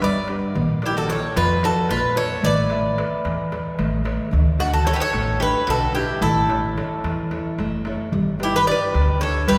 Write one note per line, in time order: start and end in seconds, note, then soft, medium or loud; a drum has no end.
0.00 0.39 G1 medium
0.00 0.54 G3 medium
0.00 0.17 D4 soft
0.00 0.17 G4 soft
0.00 0.18 B4 medium
0.00 0.27 B4 medium
0.00 0.28 D5 medium
0.00 darbuka tek medium
0.28 0.50 D4 soft
0.28 0.50 G4 soft
0.28 0.50 B4 medium
0.28 darbuka tek medium
0.55 1.12 A#1 loud
0.55 1.08 A#3 medium
0.55 darbuka dum medium
0.82 0.96 E4 medium
0.82 1.09 F4 medium
0.82 1.09 A#4 soft
0.82 1.09 D5 medium
0.82 darbuka tek medium
0.86 0.97 G4 medium
0.96 1.09 F#4 medium
0.96 1.09 A4 medium
0.96 darbuka tek soft
1.09 1.53 F4 soft
1.09 1.36 A4 medium
1.09 1.53 A#4 soft
1.09 1.37 C#5 medium
1.09 1.53 D5 medium
1.09 darbuka tek medium
1.36 1.75 F2 loud
1.36 1.88 F3 medium
1.36 1.62 F4 medium
1.36 1.64 B4 medium
1.36 darbuka tek medium
1.50 darbuka tek soft
1.62 2.06 F4 soft
1.62 1.89 F#4 medium
1.62 1.89 A4 medium
1.62 2.06 A#4 soft
1.62 2.06 D5 medium
1.62 darbuka tek medium
1.76 darbuka tek soft
1.89 2.28 A#1 medium
1.89 2.43 A#3 medium
1.89 2.16 F4 medium
1.89 2.16 B4 medium
1.89 darbuka tek medium
2.16 2.38 F4 soft
2.16 2.43 A4 medium
2.16 2.38 A#4 soft
2.16 2.42 C#5 medium
2.16 2.39 D5 medium
2.16 darbuka tek medium
2.42 3.01 A1 loud
2.42 2.96 A3 medium
2.42 3.76 D5 medium
2.42 darbuka dum medium
2.46 3.77 B4 medium
2.57 darbuka tek soft
2.70 2.97 A4 soft
2.70 2.97 B4 soft
2.70 2.97 E5 medium
2.70 darbuka tek medium
2.85 darbuka tek soft
2.98 3.41 A4 medium
2.98 3.42 B4 soft
2.98 3.42 E5 soft
2.98 darbuka tek medium
3.25 3.63 E2 medium
3.25 3.78 E3 medium
3.25 darbuka tek medium
3.39 darbuka tek soft
3.52 3.95 A4 soft
3.52 3.96 B4 soft
3.52 3.96 C#5 medium
3.52 darbuka tek medium
3.66 darbuka tek soft
3.79 4.17 A1 medium
3.79 4.32 A3 medium
3.79 darbuka tek medium
3.79 darbuka dum medium
4.04 4.27 A4 soft
4.04 4.27 B4 soft
4.04 4.27 C#5 medium
4.04 darbuka tek medium
4.31 4.90 D2 loud
4.31 4.85 D3 medium
4.31 darbuka dum medium
4.58 4.85 D4 soft
4.58 4.73 D4 medium
4.58 4.85 F#4 soft
4.58 4.73 F#4 medium
4.58 4.86 A4 medium
4.58 darbuka tek medium
4.73 4.87 F#4 medium
4.73 4.88 A4 medium
4.73 darbuka tek soft
4.86 5.30 D4 soft
4.86 5.30 F#4 soft
4.86 5.31 A4 medium
4.86 4.94 A4 medium
4.86 4.93 C#5 medium
4.86 darbuka tek medium
4.93 5.02 G4 medium
4.93 5.01 B4 medium
5.00 5.38 A4 medium
5.00 5.42 C#5 loud
5.13 5.52 A1 loud
5.13 5.67 A3 medium
5.13 darbuka tek medium
5.28 darbuka tek soft
5.40 5.84 D4 soft
5.40 5.84 F#4 soft
5.40 5.66 G4 medium
5.40 5.84 A4 medium
5.40 5.70 B4 medium
5.40 darbuka tek medium
5.55 darbuka tek soft
5.67 6.06 B1 medium
5.67 6.21 D3 medium
5.67 5.93 F#4 medium
5.67 5.94 A4 medium
5.67 darbuka tek medium
5.93 6.16 D4 medium
5.93 6.21 E4 medium
5.93 6.16 F#4 soft
5.93 6.21 G4 medium
5.93 6.16 A4 medium
5.93 darbuka tek medium
6.21 6.79 A1 loud
6.21 6.75 A3 medium
6.21 7.81 E4 medium
6.21 7.81 A4 medium
6.21 darbuka dum medium
6.48 6.76 E4 soft
6.48 6.76 A4 soft
6.48 6.77 C#5 medium
6.48 darbuka tek medium
6.64 darbuka tek soft
6.77 7.21 E4 soft
6.77 7.21 A4 soft
6.77 7.21 C#5 medium
6.77 darbuka tek medium
7.04 7.42 E2 medium
7.04 7.57 E3 medium
7.04 darbuka tek medium
7.18 darbuka tek soft
7.31 7.74 E4 soft
7.31 7.75 A4 soft
7.31 7.75 C#5 soft
7.31 darbuka tek medium
7.45 darbuka tek soft
7.58 7.96 F#1 medium
7.58 8.12 A3 medium
7.58 darbuka tek medium
7.85 8.08 E4 medium
7.85 8.08 A4 soft
7.85 8.08 C#5 medium
7.85 darbuka tek medium
8.12 8.70 G1 loud
8.12 8.38 G3 medium
8.12 darbuka dum medium
8.39 8.65 D4 soft
8.39 8.66 G4 soft
8.39 8.66 B4 medium
8.39 darbuka tek medium
8.43 8.55 E4 medium
8.43 8.55 G4 medium
8.56 8.68 G4 medium
8.56 8.67 B4 medium
8.66 9.10 D4 medium
8.66 9.10 G4 medium
8.66 9.10 B4 medium
8.66 9.20 D5 medium
8.66 darbuka tek medium
8.71 9.20 B4 medium
8.94 9.32 D2 loud
8.94 9.46 D3 medium
8.94 darbuka tek medium
9.08 darbuka tek soft
9.19 9.58 D4 soft
9.19 9.58 G4 soft
9.19 9.47 A4 medium
9.19 9.58 B4 medium
9.19 9.46 C#5 medium
9.19 darbuka tek medium
9.35 darbuka tek soft
9.47 9.58 G1 medium
9.47 9.58 G3 medium
9.47 9.58 G4 medium
9.47 9.58 B4 medium
9.47 darbuka tek medium